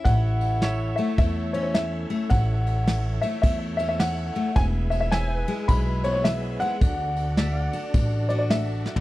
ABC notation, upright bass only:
X:1
M:4/4
L:1/8
Q:"Swing" 1/4=106
K:A
V:1 name="Upright bass" clef=bass
A,,,4 E,,4 | A,,,4 E,,4 | E,,,4 B,,,4 | D,,4 A,,,4 |]